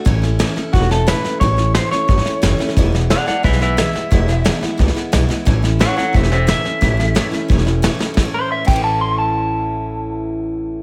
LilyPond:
<<
  \new Staff \with { instrumentName = "Clean electric guitar" } { \time 4/4 \key a \major \tempo 4 = 177 r2 fis'8 a'8 b'4 | cis''4 c''8 cis''2~ cis''8~ | cis''8 r8 <d'' fis''>8 <d'' fis''>8 <b' e''>8 <b' e''>8 e''4~ | e''2 r2 |
r4 <cis'' fis''>8 <cis'' fis''>8 <c'' e''>8 <c'' e''>8 e''4~ | e''2 r2 | r8 c''8 e''8 g''8 a''8 c'''8 a''4~ | a''1 | }
  \new Staff \with { instrumentName = "Steel-string acoustic guitar" } { \time 4/4 \key a \major <a, e a cis' e'>8 <a cis' e'>8 <a, e a cis' e'>8 <a cis' e'>8 <e a cis' e'>8 <a cis' e'>8 <a, e a cis' e'>8 <a cis' e'>8 | <a, e a cis' e'>8 <a cis' e'>8 <a, e a cis' e'>8 <a cis' e'>8 <e a cis' e'>8 <a cis' e'>8 <a, e a cis' e'>8 <a cis' e'>8 | <e, b, e gis b e'>8 <e gis b e'>8 <e, b, e gis b e'>8 <e gis b e'>8 <e gis b e'>8 <e gis b e'>8 <e, b, e gis b e'>8 <e gis b e'>8 | <e, b, e gis b e'>8 <e gis b e'>8 <e, b, e gis b e'>8 <e gis b e'>8 <e gis b e'>8 <e gis b e'>8 <e, b, e gis b e'>8 <e gis b e'>8 |
<a, e a cis' e'>8 <a cis' e'>8 <a, e a cis' e'>8 <a cis' e'>8 <e a cis' e'>8 <a cis' e'>8 <a, e a cis' e'>8 <a cis' e'>8 | <a, e a cis' e'>8 <a cis' e'>8 <a, e a cis' e'>8 <a cis' e'>8 <e a cis' e'>8 <a cis' e'>8 <a, e a cis' e'>8 <a cis' e'>8 | <a, e a cis' e'>8 r4 <a, e a cis' e'>2~ <a, e a cis' e'>8~ | <a, e a cis' e'>1 | }
  \new Staff \with { instrumentName = "Upright bass" } { \clef bass \time 4/4 \key a \major a,,4. r8 e,,4. r8 | a,,4. r8 g,,8 r8 fis,,8 r8 | e,,4. r8 b,,4. r8 | e,,4. r8 cis,8 r8 b,,8 r8 |
a,,4. r8 e,,4. r8 | a,,4. r8 e,,4. r8 | a,,8 r4 a,,2~ a,,8~ | a,,1 | }
  \new DrumStaff \with { instrumentName = "Drums" } \drummode { \time 4/4 <bd sn>8 sn8 <hhp sn>8 sn8 <bd sn>16 sn16 sn8 <hhp sn>8 sn8 | <bd sn>8 sn8 <hhp sn>8 sn8 <bd sn>16 sn16 sn8 <hhp sn>8 sn16 sn16 | <bd sn>8 sn8 <hhp sn>8 sn8 <bd sn>16 sn16 sn8 <hhp sn>8 sn8 | <bd sn>8 sn8 <hhp sn>8 sn8 <bd sn>16 sn16 sn8 <hhp sn>8 sn8 |
<bd sn>8 sn8 <hhp sn>8 sn8 <bd sn>16 sn16 sn8 <hhp sn>8 sn8 | <bd sn>8 sn8 <hhp sn>8 sn8 <bd sn>16 sn16 sn8 <hhp sn>8 sn8 | <bd sn>4 r8 <cymc bd>8 r4 r4 | r4 r4 r4 r4 | }
>>